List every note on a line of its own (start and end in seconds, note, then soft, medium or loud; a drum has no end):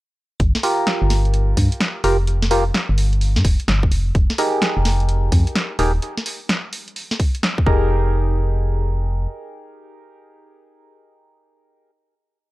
0.40 0.52 G1 loud
0.40 kick loud
0.40 closed hi-hat medium
0.55 snare medium
0.63 2.02 F4 medium
0.63 2.02 G4 medium
0.63 2.02 A#4 medium
0.63 open hi-hat loud
0.87 snare loud
0.87 closed hi-hat medium
1.02 1.54 G1 loud
1.10 snare medium
1.10 open hi-hat loud
1.25 closed hi-hat soft
1.34 closed hi-hat medium
1.57 1.69 G2 medium
1.57 kick medium
1.57 open hi-hat loud
1.72 closed hi-hat medium
1.80 snare loud
1.80 closed hi-hat medium
2.04 2.72 F1 medium
2.04 2.17 F4 medium
2.04 2.17 G4 medium
2.04 2.17 A#4 medium
2.04 open hi-hat loud
2.27 closed hi-hat medium
2.42 snare medium
2.51 2.64 F4 loud
2.51 2.64 G4 medium
2.51 2.64 A#4 loud
2.51 open hi-hat loud
2.74 snare loud
2.74 closed hi-hat medium
2.89 3.38 G1 loud
2.98 open hi-hat loud
3.13 closed hi-hat soft
3.21 open hi-hat medium
3.36 3.43 G2 medium
3.36 snare medium
3.45 3.57 F1 loud
3.45 kick loud
3.45 open hi-hat loud
3.60 closed hi-hat medium
3.68 3.88 G1 medium
3.68 snare loud
3.68 closed hi-hat medium
3.83 kick loud
3.92 4.11 F1 medium
3.92 open hi-hat loud
4.15 4.27 F1 loud
4.15 kick loud
4.15 closed hi-hat medium
4.30 snare medium
4.38 5.77 D#4 medium
4.38 5.77 G4 medium
4.38 5.77 G#4 medium
4.38 5.77 A#4 medium
4.38 open hi-hat loud
4.62 snare loud
4.62 closed hi-hat medium
4.77 5.29 F1 loud
4.85 snare medium
4.85 open hi-hat loud
5.00 closed hi-hat soft
5.09 closed hi-hat medium
5.32 5.44 F2 medium
5.32 kick loud
5.32 open hi-hat loud
5.47 closed hi-hat medium
5.55 snare loud
5.55 closed hi-hat medium
5.79 5.99 D#1 medium
5.79 5.92 D#4 medium
5.79 5.92 G4 medium
5.79 5.92 G#4 medium
5.79 5.92 A#4 medium
5.79 open hi-hat loud
6.02 closed hi-hat medium
6.17 snare medium
6.26 open hi-hat medium
6.49 snare loud
6.49 closed hi-hat medium
6.73 open hi-hat loud
6.88 closed hi-hat soft
6.96 open hi-hat medium
7.11 snare medium
7.20 kick loud
7.20 open hi-hat medium
7.35 closed hi-hat medium
7.43 snare loud
7.43 closed hi-hat medium
7.58 kick loud
7.66 9.27 F1 loud
7.66 11.91 D#4 medium
7.66 11.91 G4 medium
7.66 11.91 G#4 medium
7.66 11.91 A#4 medium
7.66 kick loud